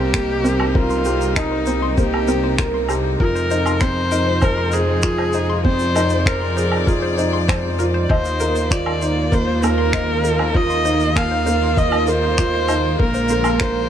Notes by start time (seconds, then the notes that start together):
Already playing: C2 C3 G3 A#3 C4 D#4 G4 A#4
0.14 A#3 C5, finger snap, kick, shaker
0.44 C4 A#4, shaker
0.60 C5, low woodblock
0.75 F4 A#4 C5, kick
0.90 C6, shaker
1.05 G4 C5, shaker
1.21 shaker
1.36 D#4 A#4, finger snap, kick, low woodblock, shaker
1.52 C5
1.66 C4 C5, shaker
1.82 C6
1.98 A#3 G4 C5, kick, shaker
2.14 low woodblock
2.28 C4 A#4, shaker
2.44 C5
2.58 A#4 C5, finger snap, kick, shaker
2.74 C6
2.89 G4 C5, low woodblock, shaker
3.20 F2 F3 G#3 F4 A#4, kick
3.35 C5, shaker
3.51 D#4 C5, shaker
3.66 C6, low woodblock, shaker
3.80 C4 C5, finger snap, kick, shaker
4.11 D#4 A#4, shaker
4.27 C5
4.42 A#4 C5, kick, low woodblock, shaker
4.58 C6
4.72 G#4 C5, shaker
5.02 F4 A#4, finger snap, kick, shaker
5.18 C5, low woodblock
5.33 D#4 C5, shaker
5.50 C6
5.64 C4 C5 D5, kick
5.79 shaker
5.96 D#4 A#4, low woodblock, shaker
6.09 C5, shaker
6.26 A#4 C5, finger snap, kick, shaker
6.41 C6
6.57 G#4 C5, shaker
6.72 low woodblock
6.87 F4 G#4 A#4, kick, shaker
7.02 C5
7.18 D#4 C5, shaker
7.33 C6
7.48 C5, finger snap, kick, low woodblock, shaker
7.79 F4 A#4, shaker
7.94 C5
8.03 D5
8.09 D#2 D#3 F3 A#3 F4 C5 D#5, kick, low woodblock
8.25 shaker
8.40 A#4, shaker
8.55 C5, shaker
8.71 F4 C5 D5, finger snap, kick, shaker
8.86 C6, low woodblock
9.02 D#4 C5, shaker
9.32 A#3 A#4 C5, kick, shaker
9.47 C5
9.63 A#3 A#4 C5, low woodblock, shaker
9.78 C6
9.93 C5 D#5, finger snap, kick, shaker
10.24 A#4, shaker
10.39 C5, low woodblock
10.54 F4 C5 D#5, kick
10.70 C6, shaker
10.85 D#4 C5, shaker
11.00 shaker
11.16 A#3 A#4 F5, finger snap, kick, low woodblock, shaker
11.31 C5
11.46 A#3 C5, shaker
11.62 C6
11.77 C5 D#5, kick, shaker
11.92 low woodblock
12.07 A#4 C5, shaker
12.23 C5
12.38 F4 C5, finger snap, kick, shaker
12.54 C6
12.68 D#4 C5, low woodblock, shaker
12.99 A#1 D3 G#3 A#3 A#4, kick
13.14 C5, shaker
13.29 A#3 C5, shaker
13.44 C6, low woodblock, shaker
13.60 A#4 C5, finger snap, kick, shaker